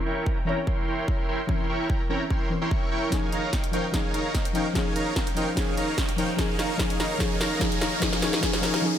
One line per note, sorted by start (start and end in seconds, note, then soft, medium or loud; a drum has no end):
0.00 0.43 E3 medium
0.00 0.44 C4 medium
0.00 0.45 C#4 medium
0.00 0.45 A#4 loud
0.00 riser medium
0.06 0.24 E4 medium
0.06 0.24 A#4 medium
0.06 0.24 C#5 medium
0.06 0.24 G5 medium
0.06 0.24 C#6 medium
0.26 kick medium
0.45 1.46 E3 medium
0.45 1.46 C4 medium
0.45 1.47 C#4 medium
0.45 0.58 E4 medium
0.45 0.58 A#4 medium
0.45 0.58 C#5 medium
0.45 0.58 G5 medium
0.45 0.58 A#5 loud
0.49 1.48 C#5 loud
0.67 0.85 E4 loud
0.67 0.85 A#4 medium
0.67 0.85 C#5 medium
0.67 0.85 G5 medium
0.67 0.85 C6 loud
0.67 kick medium
0.88 1.06 E4 medium
0.88 1.06 A#4 medium
0.88 1.06 C#5 medium
0.88 1.06 G5 medium
0.88 1.06 C6 medium
1.08 1.26 C#5 medium
1.08 1.26 C6 medium
1.08 kick medium
1.28 1.40 E4 medium
1.28 1.40 A#4 medium
1.28 1.40 C#5 medium
1.28 1.40 G5 medium
1.28 1.40 C6 medium
1.47 2.07 E3 medium
1.47 2.07 C4 medium
1.47 2.08 C#4 medium
1.47 1.67 E4 medium
1.47 1.67 A#4 medium
1.47 2.09 A#4 medium
1.47 1.67 C#5 medium
1.47 1.67 G5 medium
1.47 1.67 C6 medium
1.47 kick medium
1.69 1.87 E4 medium
1.69 1.87 A#4 medium
1.69 1.87 C#5 medium
1.69 1.87 G5 medium
1.69 1.87 C#6 medium
1.90 2.01 A#4 medium
1.90 2.01 A#5 medium
1.90 kick medium
2.09 2.48 E3 medium
2.09 2.49 C4 medium
2.09 2.49 C#4 medium
2.09 2.22 E4 medium
2.09 2.22 A#4 medium
2.09 2.49 A#4 medium
2.09 2.22 C#5 medium
2.09 2.22 G5 medium
2.09 2.22 A#5 medium
2.30 2.49 E4 loud
2.30 2.49 A#4 medium
2.30 2.49 C#5 medium
2.30 2.49 G5 medium
2.30 2.49 C6 loud
2.30 kick medium
2.50 2.70 E3 medium
2.50 2.70 C4 medium
2.50 2.70 C#4 medium
2.50 2.71 A#4 medium
2.62 2.69 E4 medium
2.62 2.69 A#4 medium
2.62 2.69 C#5 medium
2.62 2.69 G5 medium
2.62 2.69 C6 medium
2.71 2.89 E4 medium
2.71 2.89 A#4 medium
2.71 2.89 C#5 medium
2.71 2.89 G5 medium
2.71 kick medium
2.92 3.10 E4 medium
2.92 3.10 A#4 medium
2.92 3.10 C#5 medium
2.92 3.10 G5 medium
2.92 3.10 C#6 loud
3.10 3.70 F3 medium
3.10 3.71 C#4 medium
3.10 3.71 D#4 medium
3.10 3.72 G#4 medium
3.10 kick medium
3.10 snare soft
3.10 closed hi-hat medium
3.32 3.51 D#4 medium
3.32 3.51 A#4 medium
3.32 3.51 C#5 medium
3.32 3.51 F5 medium
3.32 3.51 A#5 medium
3.32 closed hi-hat medium
3.53 3.65 D#4 medium
3.53 3.65 C#5 medium
3.53 kick medium
3.53 snare medium
3.53 closed hi-hat medium
3.64 closed hi-hat medium
3.71 3.90 F3 medium
3.71 3.92 C#4 medium
3.71 3.85 D#4 medium
3.71 3.93 D#4 medium
3.71 3.85 A#4 medium
3.71 3.93 C5 medium
3.71 3.85 C#5 medium
3.71 3.85 F5 medium
3.71 3.85 G5 medium
3.71 closed hi-hat medium
3.92 4.52 F3 medium
3.92 4.52 C#4 medium
3.92 4.12 D#4 medium
3.92 4.53 D#4 medium
3.92 4.54 G#4 medium
3.92 4.12 A#4 medium
3.92 4.12 C#5 medium
3.92 4.12 F5 medium
3.92 4.12 G#5 medium
3.92 kick medium
3.92 snare medium
3.92 closed hi-hat medium
4.14 4.32 D#4 medium
4.14 4.32 A#4 medium
4.14 4.32 C#5 medium
4.14 4.32 F5 medium
4.14 4.32 A#5 medium
4.14 closed hi-hat medium
4.35 4.46 D#4 medium
4.35 4.46 A#4 medium
4.35 4.46 F5 medium
4.35 4.46 G5 medium
4.35 kick medium
4.35 snare medium
4.35 closed hi-hat medium
4.45 closed hi-hat medium
4.53 4.72 F3 medium
4.53 4.73 C#4 medium
4.53 4.67 D#4 medium
4.53 4.74 D#4 medium
4.53 4.67 A#4 medium
4.53 4.67 C#5 medium
4.53 4.67 F5 medium
4.53 4.67 G5 medium
4.53 closed hi-hat medium
4.57 4.75 C5 medium
4.73 5.33 F3 medium
4.73 5.34 C#4 medium
4.73 4.93 D#4 medium
4.73 5.35 D#4 medium
4.73 4.93 A#4 medium
4.73 4.93 C#5 medium
4.73 4.93 F5 medium
4.73 4.93 G#5 medium
4.73 kick medium
4.73 snare medium
4.73 closed hi-hat medium
4.77 5.35 G#4 loud
4.96 5.14 D#4 medium
4.96 5.14 A#4 medium
4.96 5.14 C#5 medium
4.96 5.14 F5 medium
4.96 5.14 A#5 medium
4.96 closed hi-hat medium
5.16 5.28 D#4 medium
5.16 5.28 A#4 medium
5.16 5.28 F5 medium
5.16 5.28 G5 medium
5.16 kick loud
5.16 snare medium
5.16 closed hi-hat medium
5.27 closed hi-hat medium
5.35 5.54 F3 medium
5.35 5.55 C#4 medium
5.35 5.48 D#4 medium
5.35 5.56 D#4 medium
5.35 5.48 A#4 medium
5.35 5.56 C5 loud
5.35 5.48 C#5 medium
5.35 5.48 F5 medium
5.35 5.48 G5 loud
5.35 closed hi-hat medium
5.55 6.15 F3 medium
5.55 6.16 C#4 medium
5.55 5.75 D#4 medium
5.55 6.16 D#4 medium
5.55 5.75 A#4 medium
5.55 5.75 C#5 medium
5.55 5.75 F5 medium
5.55 5.75 G#5 medium
5.55 kick medium
5.55 snare medium
5.55 closed hi-hat medium
5.59 6.17 G#4 loud
5.77 5.95 D#4 medium
5.77 5.95 A#4 medium
5.77 5.95 C#5 medium
5.77 5.95 F5 medium
5.77 5.95 A#5 medium
5.77 closed hi-hat medium
5.98 6.09 D#4 medium
5.98 6.09 A#4 medium
5.98 6.09 C#5 medium
5.98 6.09 G5 medium
5.98 kick medium
5.98 snare medium
5.98 closed hi-hat medium
6.09 closed hi-hat medium
6.16 6.35 F3 medium
6.16 6.37 C#4 medium
6.16 6.30 D#4 medium
6.16 6.37 D#4 medium
6.16 6.30 A#4 medium
6.16 6.30 C#5 medium
6.16 6.30 F5 medium
6.16 6.30 G5 loud
6.16 closed hi-hat medium
6.20 6.38 C5 loud
6.37 6.76 F3 loud
6.37 6.78 C#4 medium
6.37 6.57 D#4 medium
6.37 6.78 D#4 medium
6.37 6.57 A#4 medium
6.37 6.57 C#5 medium
6.37 6.57 F5 medium
6.37 6.57 G#5 medium
6.37 kick medium
6.37 snare medium
6.37 closed hi-hat medium
6.41 6.79 G#4 loud
6.59 6.77 D#4 medium
6.59 6.77 A#4 medium
6.59 6.77 C#5 medium
6.59 6.77 F5 medium
6.59 6.77 A#5 medium
6.59 snare medium
6.59 closed hi-hat medium
6.77 7.17 F3 medium
6.77 7.18 C#4 medium
6.77 6.97 D#4 medium
6.77 7.19 D#4 medium
6.77 7.20 G#4 loud
6.77 6.97 A#4 medium
6.77 6.97 C#5 medium
6.77 6.98 F5 medium
6.77 6.97 G#5 medium
6.77 kick loud
6.77 snare medium
6.77 closed hi-hat medium
6.90 closed hi-hat medium
7.00 7.18 D#4 medium
7.00 7.18 A#4 medium
7.00 7.18 C#5 medium
7.00 7.18 F5 medium
7.00 7.18 A#5 medium
7.00 snare medium
7.00 closed hi-hat medium
7.18 7.58 F3 medium
7.18 7.59 C#4 medium
7.18 7.38 D#4 medium
7.18 7.60 D#4 medium
7.18 7.38 C#5 medium
7.18 kick loud
7.18 snare medium
7.18 closed hi-hat medium
7.22 7.61 G#4 loud
7.41 7.59 D#4 medium
7.41 7.59 A#4 medium
7.41 7.59 C#5 medium
7.41 7.59 F5 medium
7.41 7.59 A#5 medium
7.41 snare medium
7.41 closed hi-hat medium
7.59 7.99 F3 medium
7.59 8.00 C#4 medium
7.59 7.79 D#4 medium
7.59 8.01 D#4 medium
7.59 8.01 G#4 loud
7.59 7.79 A#4 medium
7.59 7.79 C#5 medium
7.59 7.79 F5 medium
7.59 7.79 G#5 medium
7.59 kick loud
7.59 snare medium
7.59 closed hi-hat medium
7.72 closed hi-hat medium
7.81 8.00 D#4 medium
7.81 8.00 A#4 medium
7.81 8.00 C#5 medium
7.81 8.00 F5 medium
7.81 8.00 A#5 medium
7.81 snare medium
7.81 closed hi-hat medium
8.00 8.19 F3 loud
8.00 8.20 C#4 medium
8.00 8.20 D#4 medium
8.00 8.21 D#4 medium
8.00 8.22 G#4 loud
8.00 8.20 A#4 medium
8.00 kick medium
8.00 snare medium
8.00 closed hi-hat medium
8.13 snare medium
8.20 8.39 F3 medium
8.20 8.41 C#4 medium
8.20 8.40 D#4 medium
8.20 8.41 D#4 medium
8.20 8.42 G#4 loud
8.20 8.40 A#4 medium
8.20 8.40 C#5 medium
8.20 8.40 F5 medium
8.20 8.40 G#5 medium
8.20 snare medium
8.20 closed hi-hat medium
8.33 snare medium
8.41 8.60 F3 medium
8.41 8.61 C#4 medium
8.41 8.61 D#4 medium
8.41 8.62 D#4 medium
8.41 8.63 G#4 loud
8.41 8.61 A#4 medium
8.41 8.61 C#5 medium
8.41 8.61 F5 medium
8.41 8.61 G#5 medium
8.41 kick loud
8.41 snare loud
8.41 closed hi-hat medium
8.53 snare medium
8.53 closed hi-hat medium
8.61 8.80 F3 medium
8.61 8.82 C#4 medium
8.61 8.81 D#4 medium
8.61 8.82 D#4 medium
8.61 8.81 A#4 medium
8.61 8.81 C#5 medium
8.61 8.81 F5 medium
8.61 8.81 G#5 medium
8.61 snare loud
8.61 closed hi-hat medium
8.65 8.83 G#4 loud
8.74 snare medium
8.82 8.98 F3 medium
8.82 8.98 C#4 medium
8.82 8.98 D#4 medium
8.82 8.98 G#4 loud